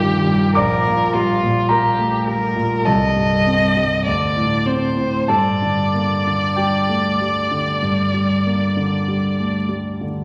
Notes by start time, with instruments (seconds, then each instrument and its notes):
Already playing: grand piano C2 G2 F3 G3 G4 A4 G5 A5, violin G4
0.00 grand piano D#3
0.27 grand piano G2
0.55 grand piano A#1 D5 D6, violin A#4
0.87 grand piano A#2
1.13 grand piano G3, violin F4
1.43 grand piano A#2
1.69 grand piano G3 A#4 A#5, violin G4
1.99 grand piano A3
2.27 grand piano G3, violin A#4
2.56 grand piano A#2
2.85 grand piano C2 A4 A5, violin D#5
3.16 grand piano G2
3.47 grand piano C4
3.76 grand piano G2
4.05 grand piano D2, violin D5
4.36 grand piano A2
4.66 grand piano C4, violin C5
4.97 grand piano A2
5.28 grand piano G2 A4 A5, violin D5
5.62 grand piano D3
5.94 grand piano A#3
6.27 grand piano D3
6.56 grand piano G3 G4 G5
6.89 grand piano A3
7.21 grand piano G3
7.51 grand piano D3
7.82 grand piano G2
8.14 grand piano G3
8.46 grand piano A#3
8.77 grand piano D3
9.08 grand piano G3
9.40 grand piano A3
9.69 grand piano G3
10.01 grand piano D3